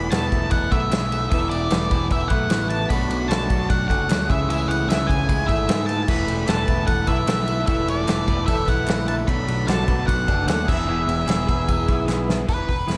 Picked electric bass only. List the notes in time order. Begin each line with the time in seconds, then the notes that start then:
0.11 E1
0.32 E1
0.51 E1
0.72 B1
0.91 B1
1.32 E1
1.51 E1
1.70 E1
1.91 E1
2.11 E1
2.31 B1
2.49 A1
2.91 B1
3.08 B1
3.29 B1
3.50 B1
3.70 B1
3.89 F#1
4.08 D2
4.30 C#2
4.48 C#2
4.68 C#2
4.87 C#2
5.09 C#2
5.29 C#2
5.49 G#1
5.68 G#2
6.08 E1
6.28 E1
6.48 E1
6.68 E1
6.88 E1
7.08 B1
7.26 B1
7.68 E1
7.86 E1
8.08 E1
8.28 E1
8.48 E1
8.68 B1
8.89 A#1
9.28 B1
9.48 B1
9.67 B1
9.88 B1
10.08 B1
10.28 F#1
10.46 D#2
10.68 E1
10.87 E1
11.06 E1
11.26 E1
11.48 E1
11.69 E1
11.88 B1
12.08 B1
12.48 E1
12.68 E1
12.87 E1